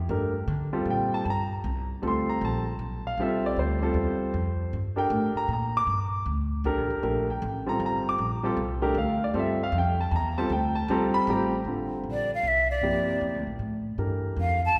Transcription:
0.09 upright bass G2, grand piano A3 D4 G4 A#4
0.48 upright bass D3
0.73 grand piano G3 C4 F4 A4
0.85 upright bass A#2
0.90 grand piano G5
1.14 grand piano A5
1.25 upright bass G2, grand piano A5
1.30 grand piano A#5
1.64 upright bass C2
2.02 upright bass D2, grand piano G3 C4 F4 A4
2.08 grand piano C6
2.29 grand piano A#5
2.41 upright bass A#1, grand piano A5
2.79 upright bass B1
3.07 grand piano F5
3.18 upright bass C2, grand piano G3 C4 F4 A4
3.22 grand piano E5
3.46 grand piano D5
3.57 upright bass D2, grand piano C5
3.82 grand piano G3 C4 F4 A4
3.94 upright bass E2
4.20 muted upright bass stroke
4.34 upright bass F2
4.73 upright bass G2
4.96 grand piano D4 G4 A4 A#4 G5
5.10 upright bass A2
5.35 grand piano A#5, muted upright bass stroke
5.48 upright bass A#2
5.53 grand piano A#5
5.77 grand piano D6
5.87 upright bass G2
6.26 upright bass D2
6.64 upright bass C2, grand piano D4 G4 A4 A#4
6.77 upright bass A#1
6.90 upright bass G1
7.03 upright bass A#1, grand piano A3 D4 G4 A#4
7.30 grand piano G5
7.42 upright bass A1
7.66 grand piano G3 C4 F4 A4 A#5
7.80 upright bass G1
7.86 grand piano A#5
8.09 grand piano D6
8.18 upright bass A#1
8.43 grand piano G3 C4 F4 A4
8.57 upright bass C2
8.82 grand piano A3 D4 G4 A#4
8.95 upright bass D2, grand piano F5
9.24 grand piano D5
9.34 upright bass G2, grand piano G3 C4 F4 A4
9.39 grand piano E5
9.63 grand piano F5
9.72 upright bass F2
9.78 grand piano G5
10.01 grand piano A5
10.11 upright bass E2, grand piano A5
10.16 grand piano A#5
10.38 grand piano G3 C4 F4 A4 A5
10.50 upright bass D2, grand piano G5
10.75 grand piano A5
10.88 upright bass C2, grand piano G3 C4 F4 A4 A#5
11.14 grand piano B5, muted upright bass stroke
11.27 upright bass A1, grand piano G3 C4 F4 G4 A#5
11.64 upright bass G1, grand piano D3 G3 C4 F4 A4
12.04 upright bass A#1
12.11 flute D5
12.35 flute F5
12.43 upright bass C2
12.48 flute E5
12.71 flute D5
12.81 upright bass G2, grand piano C3 F3 A#3 E4 G4
13.21 upright bass F2
13.34 upright bass D2
13.47 upright bass A#1
13.59 upright bass A2
13.98 upright bass G2, grand piano E3 D4 G4 A4 A#4
14.36 upright bass F2
14.41 flute F5
14.65 flute A5
14.75 upright bass E2

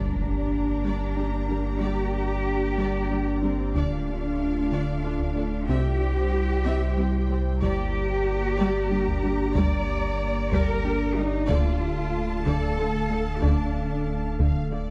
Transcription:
Already playing: sub bass G1, analog synth pad A#3 D4 G4 D5, cello section D4, violin section D5 A#5, impact
0.84 synth pluck G3, viola section G3, violin section D5
1.17 viola section G3, synth pluck D4, violin section G4
1.49 viola section G3, synth pluck D4, violin section A#4
1.81 synth pluck G3, viola section G3, cello section G4, violin section D5
2.78 synth pluck G3, viola section G3, violin section D5
3.10 viola section G3, synth pluck D4, violin section G4
3.42 viola section G3, cello section C4, synth pluck D4, violin section A#4
3.75 sub bass D1, synth pluck D3, analog synth pad A3 F4, cello section D4, viola section D4, violin section D5 F5, taiko
4.72 synth pluck D3, viola section D4, violin section D5
5.04 synth pluck A3, viola section D4, violin section F4
5.20 taiko
5.36 synth pluck A3, viola section D4, violin section A4
5.68 sub bass C2, synth pluck C3, analog synth pad G3 E4 G4 C5, viola section C4, cello section G4, violin section E5 G5
6.65 synth pluck C3, viola section C4, violin section E5
6.97 synth pluck G3, viola section C4, violin section G4
7.30 synth pluck G3, viola section C4, violin section C5
7.62 sub bass G1, viola section G3, synth pluck G3, analog synth pad A#3 D5, cello section G4, violin section D5 A#5, taiko
8.58 synth pluck G3, viola section G3, violin section D5
8.91 viola section G3, synth pluck D4, violin section G4
9.07 taiko
9.23 viola section G3, synth pluck D4, violin section A#4
9.55 synth pluck G3, viola section G3, violin section D5, cello section D5, taiko
10.52 synth pluck G3, viola section G3, cello section A#4, violin section D5, taiko
10.85 viola section G3, synth pluck D4, violin section G4
11.17 viola section G3, cello section D#4, violin section A#4, synth pluck D5
11.49 sub bass D1, analog synth pad D3 A3 A4 F5, synth pluck D3, viola section D3, cello section F4, violin section D5 A5, taiko
12.46 synth pluck D3, viola section D3, cello section A4, violin section D5, taiko
12.78 viola section D3, synth pluck A3, violin section F4
13.10 viola section D3, synth pluck A3, violin section A4
13.43 viola section D3, synth pluck D3, cello section D4, violin section D5, taiko
14.39 viola section D3, synth pluck D3, violin section F5, taiko
14.72 viola section D3, synth pluck A3, violin section D5

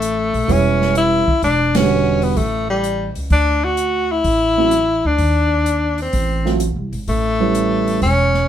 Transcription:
Already playing: upright bass A1, tenor saxophone A3
0.02 closed hi-hat
0.33 upright bass A#1, open hi-hat
0.48 upright bass E1, grand piano G3 B3 C#4 E4, tenor saxophone C#4, kick, open hi-hat
0.82 snare
0.95 tenor saxophone E4, closed hi-hat
1.28 muted upright bass stroke, kick
1.42 upright bass E1, tenor saxophone D4, kick, open hi-hat
1.75 grand piano D3 G3 B3 F#4, tenor saxophone C#4, snare, ride
2.22 tenor saxophone B3, open hi-hat
2.37 upright bass A1, tenor saxophone A3, kick, open hi-hat
2.70 tenor saxophone G3
2.84 closed hi-hat
3.15 upright bass C#2, open hi-hat
3.30 upright bass D2, tenor saxophone D4, kick, open hi-hat
3.64 tenor saxophone F#4
3.77 closed hi-hat
4.12 tenor saxophone E4
4.24 upright bass A1, kick, open hi-hat
4.58 grand piano F#3 A3 C4 E4
4.71 closed hi-hat
5.05 upright bass D2, tenor saxophone D4
5.18 upright bass D#2, kick, open hi-hat
5.66 closed hi-hat
5.98 open hi-hat
6.02 tenor saxophone C4
6.13 upright bass A1, kick, open hi-hat
6.45 grand piano F#3 A3 C4 F4, snare
6.60 closed hi-hat
6.76 upright bass C2
6.92 upright bass G#1, open hi-hat
7.08 upright bass A1, tenor saxophone A3, kick, open hi-hat
7.40 grand piano G3 B3 C#4 E4
7.55 closed hi-hat
7.88 open hi-hat
8.02 upright bass E1, tenor saxophone C#4, kick, open hi-hat
8.34 snare

